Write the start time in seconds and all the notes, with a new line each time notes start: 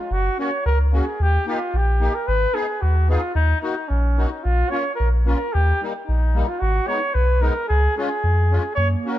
Already playing: G#3
0.00 F4
0.11 F#1 F#4
0.38 A#3 C#4 F#4 C#5
0.66 C#2 A#4
0.92 A#3 C#4 F#4 G#4
1.20 D#2 G4
1.46 A#3 D#4 F4 G4
1.74 A#1 G4
2.00 A#3 D#4 G4
2.14 A#4
2.27 G#1 B4
2.54 B3 D#4 G#4
2.81 D#2 F#4
3.08 B3 D#4 F4 G#4
3.35 D#2 D#4
3.61 A#3 D#4 F#4
3.88 A#1 C#4
4.17 A#3 D#4 F#4
4.29 D#4
4.43 A#1 F4
4.70 A#3 C#4 F4 C#5
4.95 A#4
5.00 A#1
5.25 A#3 C#4 F4 A#4
5.53 D#2 G4
5.81 G3 A#3 D#4
6.07 A#1 D#4
6.34 G3 A#3 D#4
6.48 F4
6.60 G#1 F#4
6.86 G#3 B3 D#4 C#5
7.14 B1 B4
7.41 G#3 B3 D#4 A#4
7.68 C#2 G#4
7.97 G#3 C#4 F4 G#4
8.24 F2
8.51 G#3 C#4 F4
8.75 F#2 A#3 C#5
9.05 A#3 C#4 F#4 A#4